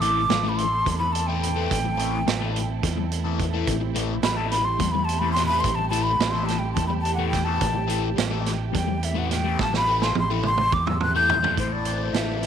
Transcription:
Already playing: fingered electric bass A1, string section A3 C4 E4 A4
0.01 distorted electric guitar A2 E3 A3, flute D6, closed hi-hat
0.29 fingered electric bass A1, muted distorted electric guitar stroke, snare, closed hi-hat
0.43 distorted electric guitar A2 E3 A3
0.49 flute B5
0.57 flute C6, closed hi-hat
0.85 fingered electric bass E2, muted distorted electric guitar stroke, kick, closed hi-hat
0.99 flute B5, muted distorted electric guitar stroke
1.13 flute A5, closed hi-hat
1.27 distorted electric guitar A2 E3 A3, flute G5
1.43 closed hi-hat
1.55 distorted electric guitar A2 E3 A3
1.71 fingered electric bass A1, kick, closed hi-hat
1.84 muted distorted electric guitar stroke
1.97 distorted electric guitar A2 E3 A3, closed hi-hat
2.26 fingered electric bass A1, muted distorted electric guitar stroke, snare, closed hi-hat
2.40 distorted electric guitar A2 E3 A3
2.56 closed hi-hat
2.83 fingered electric bass E2, muted distorted electric guitar stroke, kick, snare, closed hi-hat
2.97 muted distorted electric guitar stroke
3.12 closed hi-hat
3.24 distorted electric guitar A2 E3 A3
3.39 kick, closed hi-hat
3.54 distorted electric guitar A2 E3 A3
3.67 fingered electric bass A1, string section G4, kick, closed hi-hat
3.81 muted distorted electric guitar stroke
3.94 distorted electric guitar A2 E3 A3, closed hi-hat
4.23 fingered electric bass A1, flute B5, muted distorted electric guitar stroke, snare, closed hi-hat
4.36 distorted electric guitar A2 E3 A3, flute A5
4.51 flute B5, snare, closed hi-hat
4.65 flute C6
4.79 fingered electric bass E2, muted distorted electric guitar stroke, kick, closed hi-hat
4.91 flute B5, muted distorted electric guitar stroke
5.05 flute A5, closed hi-hat
5.19 distorted electric guitar A2 E3 A3, flute B5
5.33 flute C6, snare, closed hi-hat
5.46 distorted electric guitar E3 A3, flute B5
5.50 distorted electric guitar A2
5.60 flute C6, kick
5.64 fingered electric bass A1, closed hi-hat
5.75 flute A5, muted distorted electric guitar stroke
5.90 distorted electric guitar A2 E3 A3, flute A5, closed hi-hat
6.03 flute B5
6.19 fingered electric bass A1, muted distorted electric guitar stroke, snare, closed hi-hat
6.31 distorted electric guitar A2 E3 A3, flute C6
6.46 flute A5, snare, closed hi-hat
6.59 flute G5
6.73 fingered electric bass E2, flute A5, muted distorted electric guitar stroke, kick, closed hi-hat
6.87 flute B5, muted distorted electric guitar stroke
7.01 flute A5, closed hi-hat
7.15 distorted electric guitar A3, flute F#5
7.19 distorted electric guitar A2 E3
7.28 flute G5
7.33 kick, snare, closed hi-hat
7.44 distorted electric guitar A2 E3 A3, flute A5
7.61 fingered electric bass A1, kick, closed hi-hat
7.74 muted distorted electric guitar stroke
7.87 distorted electric guitar A2 E3 A3, closed hi-hat
8.16 fingered electric bass A1, muted distorted electric guitar stroke, snare, closed hi-hat
8.30 distorted electric guitar A2 E3 A3
8.46 snare, closed hi-hat
8.73 fingered electric bass E2, flute G5, muted distorted electric guitar stroke, kick, snare, closed hi-hat
8.87 muted distorted electric guitar stroke
9.03 flute E5, closed hi-hat
9.15 distorted electric guitar A2 E3 A3, flute F#5
9.31 flute G5, snare, closed hi-hat
9.44 distorted electric guitar A2 E3 A3
9.59 fingered electric bass A1, flute A5, kick, snare
9.73 flute B5, muted distorted electric guitar stroke, snare
9.87 distorted electric guitar A2 E3 A3
10.02 flute C6, snare
10.15 fingered electric bass A1, flute C6, muted distorted electric guitar stroke, high tom
10.30 distorted electric guitar A2 E3 A3, flute B5
10.43 flute C6, mid tom
10.58 mid tom
10.72 fingered electric bass E2, flute D6, muted distorted electric guitar stroke, kick
10.87 flute E6, muted distorted electric guitar stroke, mid tom
11.01 flute F#6, mid tom
11.14 distorted electric guitar A2 E3 A3, flute G6
11.30 floor tom
11.43 distorted electric guitar A2 E3 A3, floor tom
11.57 fingered electric bass A1, distorted electric guitar A2, string section A3 C4 E4 A4, flute C5, kick, closed hi-hat
11.72 flute D5
11.85 distorted electric guitar C4, closed hi-hat
12.13 fingered electric bass A1, distorted electric guitar E3, flute E5, snare, closed hi-hat
12.42 distorted electric guitar E4, snare, closed hi-hat

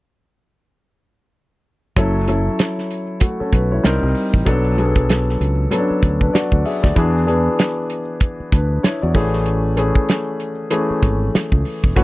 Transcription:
1.96 fingered electric bass F#1, grand piano F#3 C#4 E4 A4, kick, closed hi-hat
2.28 grand piano F#3 C#4 E4 A4, closed hi-hat
2.59 snare, closed hi-hat
2.78 snare
2.90 closed hi-hat
3.20 grand piano A3 F#4, kick, closed hi-hat
3.40 grand piano C#4 A4, muted fingered electric bass stroke
3.53 fingered electric bass B1, grand piano B4, kick, closed hi-hat
3.72 grand piano E4 C#5
3.84 fingered electric bass C2, grand piano G3 C4 D#4 A#4, snare, closed hi-hat
4.03 fingered electric bass C2
4.15 open hi-hat
4.34 fingered electric bass A1, kick
4.45 fingered electric bass B1, grand piano F#3 B3 D4 A4, kick, closed hi-hat
4.65 closed hi-hat
4.77 grand piano F#3 B3 D4 G#4, closed hi-hat
4.85 grand piano A4
4.95 kick, closed hi-hat
5.09 snare, closed hi-hat
5.29 snare
5.41 fingered electric bass C#2, closed hi-hat
5.71 grand piano F#3 B3 C#4 A4, closed hi-hat
5.78 grand piano D4
5.91 muted fingered electric bass stroke
6.03 fingered electric bass D2, kick, closed hi-hat
6.21 grand piano D4 B4, kick
6.34 grand piano F#4 D5, muted fingered electric bass stroke, snare, closed hi-hat
6.52 fingered electric bass D2, kick
6.65 grand piano G#4 E5, open hi-hat
6.83 fingered electric bass D2, grand piano F#4 D5, kick, snare
6.96 fingered electric bass E2, grand piano E3 B3 D4 G#4, kick, closed hi-hat
7.26 grand piano E3 B3 D4 G#4, closed hi-hat
7.59 snare, closed hi-hat
7.90 closed hi-hat
8.20 kick, closed hi-hat
8.40 muted fingered electric bass stroke
8.52 fingered electric bass D2, grand piano D4 B4, kick, closed hi-hat
8.83 grand piano E4 C#5, muted fingered electric bass stroke, snare, closed hi-hat
9.02 fingered electric bass E2, grand piano F#4 D5
9.14 fingered electric bass A1, grand piano E3 A3 C#4 G#4, kick, open hi-hat
9.33 snare
9.46 closed hi-hat
9.77 grand piano E3 A3 C#4 G#4, closed hi-hat
9.95 kick
10.09 snare, closed hi-hat
10.40 closed hi-hat
10.70 grand piano E3 A3 C#4 G#4, closed hi-hat
10.90 muted fingered electric bass stroke
11.03 fingered electric bass G#1, kick, closed hi-hat
11.35 muted fingered electric bass stroke, snare, closed hi-hat
11.52 fingered electric bass C#2, kick
11.65 open hi-hat
11.84 fingered electric bass E1, kick
11.96 fingered electric bass F#1, grand piano E3 A3 C#4 F#4, kick, closed hi-hat

